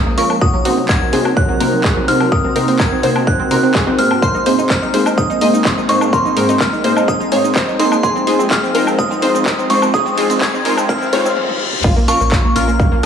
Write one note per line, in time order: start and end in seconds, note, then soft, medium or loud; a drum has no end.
0.00 0.15 A#2 medium
0.00 0.38 F3 medium
0.00 0.40 G#3 medium
0.00 0.15 C#4 medium
0.00 0.38 C#4 medium
0.00 0.15 F4 medium
0.00 0.15 A#4 medium
0.00 0.20 D#6 loud
0.06 0.34 A#1 medium
0.06 0.14 A#3 medium
0.18 0.26 A#3 medium
0.18 0.33 C#4 loud
0.18 0.33 F4 medium
0.18 0.33 A#4 loud
0.18 0.42 C#6 medium
0.18 open hi-hat loud
0.30 0.38 A#3 medium
0.30 high woodblock medium
0.41 0.70 C2 loud
0.41 4.19 C3 medium
0.41 4.19 C4 medium
0.41 4.19 D#4 medium
0.41 0.50 F#4 medium
0.41 4.19 F#4 medium
0.41 4.19 A#4 medium
0.41 0.86 D#6 loud
0.41 kick loud
0.54 0.61 F#3 medium
0.65 0.75 C3 medium
0.65 0.75 A#3 medium
0.65 0.75 C4 medium
0.65 0.75 D#4 medium
0.65 0.75 F#4 medium
0.65 0.73 F#4 medium
0.65 0.75 C5 medium
0.65 open hi-hat loud
0.77 1.06 C2 medium
0.77 0.85 F#3 medium
0.89 0.97 F#4 medium
0.89 1.38 G#6 loud
0.89 kick loud
0.89 clap loud
1.01 1.09 F#3 medium
1.13 1.41 C2 medium
1.13 1.23 C3 medium
1.13 1.23 A#3 medium
1.13 1.23 C4 medium
1.13 1.23 D#4 medium
1.13 1.23 F#4 medium
1.13 1.21 G#4 loud
1.13 1.23 C5 loud
1.13 open hi-hat loud
1.25 1.33 F#3 medium
1.25 high woodblock medium
1.37 1.45 F#3 medium
1.37 2.10 F#6 loud
1.37 kick loud
1.49 1.57 F#3 medium
1.60 1.89 F#1 medium
1.60 2.05 C3 medium
1.60 2.05 A#3 medium
1.60 2.05 C4 medium
1.60 2.05 D#4 medium
1.60 2.05 F#4 medium
1.60 1.69 A#4 medium
1.60 2.05 C5 medium
1.60 open hi-hat loud
1.73 1.80 F#3 medium
1.84 1.92 G#4 medium
1.84 kick loud
1.84 clap loud
1.97 2.25 C2 medium
1.97 2.04 F#3 medium
2.08 2.24 C3 loud
2.08 2.16 F#3 medium
2.08 2.24 A#3 medium
2.08 2.24 C4 medium
2.08 2.24 D#4 medium
2.08 2.24 F#4 medium
2.08 2.24 C5 loud
2.08 2.33 F6 medium
2.08 open hi-hat loud
2.20 2.28 F#3 medium
2.20 high woodblock medium
2.32 2.60 C2 loud
2.32 2.40 A#4 medium
2.32 2.76 D#6 loud
2.32 kick loud
2.44 2.52 C4 medium
2.56 2.66 C3 medium
2.56 2.66 A#3 medium
2.56 2.66 C4 medium
2.56 2.66 D#4 medium
2.56 2.66 F#4 medium
2.56 2.64 A#4 medium
2.56 2.66 C5 medium
2.56 open hi-hat loud
2.68 2.96 C2 medium
2.68 2.76 C4 medium
2.68 open hi-hat medium
2.79 2.88 A#4 medium
2.79 3.29 G#6 loud
2.79 kick loud
2.79 clap loud
2.92 2.99 C4 medium
3.03 3.32 C2 medium
3.03 3.13 C3 medium
3.03 3.13 A#3 medium
3.03 3.13 C4 medium
3.03 3.13 D#4 medium
3.03 3.13 F#4 medium
3.03 3.11 C5 loud
3.03 3.13 C5 loud
3.03 open hi-hat loud
3.16 3.23 C4 medium
3.16 high woodblock medium
3.27 3.35 C4 medium
3.27 3.95 F#6 loud
3.27 kick loud
3.39 3.47 C4 medium
3.51 3.79 F#1 medium
3.51 3.84 C3 medium
3.51 3.84 A#3 medium
3.51 3.84 C4 medium
3.51 3.84 D#4 medium
3.51 3.84 F#4 medium
3.51 3.59 A#4 medium
3.51 3.84 C5 medium
3.51 open hi-hat loud
3.63 3.71 C4 medium
3.75 3.83 G#4 medium
3.75 kick loud
3.75 clap loud
3.87 4.15 C2 medium
3.87 3.96 C3 medium
3.87 3.96 A#3 medium
3.87 3.95 C4 medium
3.87 3.96 C4 medium
3.87 3.96 D#4 medium
3.87 3.96 F#4 medium
3.87 3.96 C5 loud
3.99 4.14 G#2 medium
3.99 4.14 A#3 medium
3.99 4.07 C4 medium
3.99 4.14 C4 medium
3.99 4.14 D#4 medium
3.99 4.14 F#4 medium
3.99 4.14 C5 medium
3.99 4.23 F6 loud
3.99 open hi-hat loud
4.11 4.18 C4 medium
4.11 high woodblock medium
4.22 4.51 G#1 loud
4.22 11.33 G#3 medium
4.22 8.00 A#3 medium
4.22 8.00 C4 medium
4.22 4.31 C5 loud
4.22 4.67 C6 loud
4.22 kick loud
4.22 riser medium
4.22 shaker medium
4.35 4.42 D#4 medium
4.35 shaker soft
4.46 4.56 G#2 medium
4.46 4.56 A#3 medium
4.46 4.56 C4 medium
4.46 4.56 D#4 medium
4.46 4.56 G#4 medium
4.46 4.54 C5 medium
4.46 4.56 C5 loud
4.46 open hi-hat loud
4.58 4.87 G#1 medium
4.58 4.66 D#4 medium
4.58 shaker medium
4.70 4.78 C5 medium
4.70 5.19 F6 loud
4.70 kick loud
4.70 clap loud
4.70 shaker medium
4.82 4.90 D#4 medium
4.82 shaker soft
4.94 5.22 G#1 medium
4.94 5.04 G#2 medium
4.94 5.04 A#3 medium
4.94 5.04 C4 medium
4.94 5.04 D#4 medium
4.94 5.04 G#4 medium
4.94 5.02 C5 medium
4.94 5.04 C5 loud
4.94 open hi-hat loud
5.06 5.14 D#4 medium
5.06 high woodblock medium
5.06 shaker medium
5.18 5.26 D#4 medium
5.18 5.85 D#6 loud
5.18 kick loud
5.18 shaker medium
5.30 5.38 D#4 medium
5.30 shaker soft
5.41 5.70 D#1 medium
5.41 5.86 G#2 medium
5.41 5.86 A#3 medium
5.41 5.86 C4 medium
5.41 5.86 D#4 medium
5.41 5.86 G#4 medium
5.41 5.86 C5 medium
5.41 5.50 D#5 medium
5.41 open hi-hat loud
5.54 5.61 D#4 medium
5.54 shaker medium
5.65 5.73 C5 loud
5.65 kick loud
5.65 clap loud
5.65 shaker medium
5.78 6.06 G#1 medium
5.78 5.85 D#4 medium
5.78 shaker soft
5.89 6.05 G#2 loud
5.89 6.05 A#3 medium
5.89 6.05 C4 medium
5.89 6.05 D#4 loud
5.89 5.97 D#4 medium
5.89 6.05 G#4 medium
5.89 6.05 C5 loud
5.89 6.11 C#6 medium
5.89 open hi-hat loud
6.01 6.09 D#4 medium
6.01 high woodblock medium
6.01 shaker medium
6.13 6.41 G#1 loud
6.13 6.21 A#4 medium
6.13 6.62 C6 medium
6.13 kick loud
6.13 shaker medium
6.25 6.33 D#4 medium
6.25 shaker soft
6.37 6.47 G#2 medium
6.37 6.47 A#3 medium
6.37 6.47 C4 medium
6.37 6.47 D#4 medium
6.37 6.47 G#4 medium
6.37 6.45 A#4 medium
6.37 6.47 C5 medium
6.37 open hi-hat loud
6.49 6.77 G#1 medium
6.49 6.57 D#4 medium
6.49 open hi-hat medium
6.49 shaker medium
6.60 6.69 A#4 medium
6.60 7.10 F6 medium
6.60 kick loud
6.60 clap loud
6.60 shaker medium
6.73 6.80 D#4 medium
6.73 shaker soft
6.84 7.13 G#1 medium
6.84 6.94 G#2 medium
6.84 6.94 A#3 medium
6.84 6.94 C4 medium
6.84 6.94 D#4 medium
6.84 6.94 G#4 medium
6.84 6.92 C5 loud
6.84 6.94 C5 loud
6.84 open hi-hat loud
6.97 7.04 D#4 medium
6.97 high woodblock medium
6.97 shaker medium
7.08 7.16 D#4 medium
7.08 7.82 D#6 medium
7.08 kick loud
7.08 shaker medium
7.20 7.28 D#4 medium
7.20 shaker soft
7.32 7.60 D#1 medium
7.32 7.77 G#2 medium
7.32 7.77 A#3 medium
7.32 7.77 C4 medium
7.32 7.77 D#4 medium
7.32 7.77 G#4 medium
7.32 7.77 C5 medium
7.32 7.40 C#5 medium
7.32 open hi-hat loud
7.44 7.52 D#4 medium
7.44 shaker medium
7.56 7.64 C5 medium
7.56 kick loud
7.56 clap loud
7.56 shaker medium
7.68 7.96 G#1 medium
7.68 7.76 D#4 medium
7.68 shaker soft
7.79 7.95 A#3 loud
7.79 7.95 C4 loud
7.79 7.95 D#4 medium
7.79 7.88 D#4 medium
7.79 7.95 G#4 medium
7.79 7.95 C5 loud
7.79 8.02 C6 medium
7.79 open hi-hat loud
7.92 7.99 D#4 medium
7.92 high woodblock medium
7.92 shaker medium
8.03 8.32 F1 loud
8.03 11.33 F3 medium
8.03 11.33 D#4 medium
8.03 8.11 G#4 loud
8.03 8.52 C6 loud
8.03 kick loud
8.03 shaker medium
8.16 8.23 C4 medium
8.16 shaker soft
8.27 8.37 G#3 medium
8.27 8.37 C4 medium
8.27 8.37 D#4 medium
8.27 8.37 F4 medium
8.27 8.35 G#4 medium
8.27 8.37 C5 medium
8.27 open hi-hat medium
8.39 8.68 F1 medium
8.39 8.47 C4 medium
8.39 shaker medium
8.51 8.59 G#4 medium
8.51 9.00 F6 medium
8.51 kick loud
8.51 clap loud
8.51 shaker medium
8.63 8.71 C4 medium
8.63 shaker soft
8.75 9.03 F1 medium
8.75 8.85 G#3 medium
8.75 8.85 C4 medium
8.75 8.85 D#4 medium
8.75 8.85 F4 medium
8.75 8.83 A#4 medium
8.75 8.85 C5 loud
8.75 open hi-hat loud
8.87 8.95 C4 medium
8.87 high woodblock medium
8.87 shaker medium
8.99 9.07 C4 medium
8.99 9.72 D#6 medium
8.99 kick loud
8.99 shaker medium
9.11 9.19 C4 medium
9.11 shaker soft
9.22 9.51 C2 loud
9.22 9.67 G#3 medium
9.22 9.67 C4 medium
9.22 9.67 D#4 medium
9.22 9.67 F4 medium
9.22 9.31 C5 medium
9.22 9.67 C5 medium
9.22 open hi-hat loud
9.35 9.42 C4 medium
9.35 shaker medium
9.46 9.54 A#4 medium
9.46 kick loud
9.46 clap loud
9.46 shaker medium
9.58 9.87 F1 medium
9.58 9.66 C4 medium
9.58 shaker soft
9.70 9.86 G#3 loud
9.70 9.86 C4 medium
9.70 9.78 C4 medium
9.70 9.86 D#4 medium
9.70 9.86 F4 medium
9.70 9.86 C5 loud
9.70 9.92 C#6 medium
9.70 open hi-hat loud
9.82 9.90 C4 medium
9.82 high woodblock medium
9.82 shaker medium
9.94 10.22 F1 loud
9.94 10.02 G#4 medium
9.94 10.43 D#6 loud
9.94 kick loud
9.94 shaker medium
10.06 10.14 C4 medium
10.06 shaker soft
10.18 10.28 G#3 medium
10.18 10.28 C4 medium
10.18 10.28 D#4 medium
10.18 10.28 F4 medium
10.18 10.26 G#4 medium
10.18 10.28 C5 medium
10.18 open hi-hat loud
10.30 10.58 F1 medium
10.30 10.38 C4 medium
10.30 open hi-hat medium
10.30 shaker medium
10.41 10.50 G#4 medium
10.41 10.91 G#6 loud
10.41 kick loud
10.41 clap loud
10.41 shaker medium
10.54 10.61 C4 medium
10.54 shaker soft
10.65 10.94 F1 medium
10.65 10.75 G#3 medium
10.65 10.75 C4 medium
10.65 10.75 D#4 medium
10.65 10.75 F4 medium
10.65 10.73 A#4 medium
10.65 10.75 C5 loud
10.65 open hi-hat loud
10.77 10.85 C4 medium
10.77 high woodblock medium
10.77 shaker medium
10.89 10.97 C4 medium
10.89 11.38 F6 medium
10.89 kick loud
10.89 reverse cymbal medium
10.89 shaker medium
11.01 11.09 C4 medium
11.01 shaker soft
11.13 11.20 F2 loud
11.13 11.37 G#3 medium
11.13 11.37 C4 medium
11.13 11.37 D#4 medium
11.13 11.37 F4 medium
11.13 11.37 C5 medium
11.13 11.21 C#5 loud
11.13 kick medium
11.13 open hi-hat loud
11.25 11.33 C4 medium
11.25 shaker medium
11.37 high tom medium
11.49 high tom medium
11.73 mid tom medium
11.84 12.13 A#1 loud
11.84 13.06 F3 medium
11.84 13.06 A#3 medium
11.84 13.06 C#4 medium
11.84 11.92 F4 loud
11.84 kick loud
11.84 crash loud
11.84 shaker soft
11.97 12.04 A#3 medium
12.08 12.18 A#2 medium
12.08 12.18 C#4 medium
12.08 12.18 F4 medium
12.08 12.16 F4 medium
12.08 12.18 A#4 loud
12.08 12.52 C#6 loud
12.08 open hi-hat loud
12.08 high woodblock medium
12.08 shaker medium
12.20 12.48 A#1 medium
12.20 12.28 A#3 medium
12.20 shaker soft
12.32 12.40 F4 medium
12.32 kick loud
12.32 clap loud
12.32 shaker soft
12.44 12.52 A#3 medium
12.56 12.84 A#1 medium
12.56 12.66 A#2 medium
12.56 12.66 C#4 medium
12.56 12.66 F4 medium
12.56 12.64 F4 medium
12.56 12.66 A#4 loud
12.56 13.06 F6 loud
12.56 open hi-hat loud
12.56 shaker medium
12.68 12.76 A#3 medium
12.68 shaker soft
12.80 12.88 A#3 medium
12.80 kick loud
12.80 shaker soft
12.92 12.99 A#3 medium